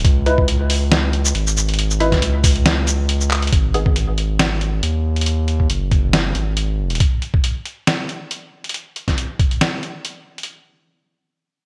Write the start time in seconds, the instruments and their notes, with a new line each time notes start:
0.04 sub bass C#2, kick, closed hi-hat
0.26 synth stab D#4 E4 B4, closed hi-hat
0.38 kick
0.48 closed hi-hat
0.70 open hi-hat
0.92 snare, closed hi-hat
1.13 closed hi-hat
1.25 shaker
1.35 sub bass G#1, closed hi-hat
1.47 shaker
1.57 shaker
1.69 closed hi-hat
1.74 closed hi-hat
1.79 closed hi-hat
1.90 shaker
2.00 synth stab D#4 E4 B4, closed hi-hat
2.12 kick, snare, closed hi-hat
2.22 sub bass C#2, closed hi-hat
2.44 kick, open hi-hat, shaker
2.56 closed hi-hat
2.66 snare, closed hi-hat
2.87 closed hi-hat, shaker
3.09 closed hi-hat
3.21 shaker
3.31 clap
3.42 closed hi-hat
3.47 closed hi-hat
3.52 sub bass G#1, kick, closed hi-hat
3.74 synth stab B3 D#4 G#4, closed hi-hat
3.86 kick
3.96 closed hi-hat
4.18 closed hi-hat
4.39 snare, closed hi-hat
4.61 closed hi-hat
4.83 sub bass D#2, closed hi-hat
5.16 closed hi-hat
5.21 closed hi-hat
5.26 closed hi-hat
5.48 closed hi-hat
5.60 kick
5.70 sub bass F#1, closed hi-hat
5.91 kick, closed hi-hat
6.13 snare, closed hi-hat
6.35 sub bass G#1, closed hi-hat
6.57 closed hi-hat
6.90 closed hi-hat
6.95 closed hi-hat
7.00 kick, closed hi-hat
7.22 closed hi-hat
7.34 kick
7.44 closed hi-hat
7.66 closed hi-hat
7.87 snare, closed hi-hat
8.09 closed hi-hat
8.31 closed hi-hat
8.64 closed hi-hat
8.69 closed hi-hat
8.74 closed hi-hat
8.96 closed hi-hat
9.08 kick, snare, closed hi-hat
9.18 closed hi-hat
9.39 kick, closed hi-hat
9.51 closed hi-hat
9.61 snare, closed hi-hat
9.83 closed hi-hat
10.05 closed hi-hat
10.38 closed hi-hat
10.43 closed hi-hat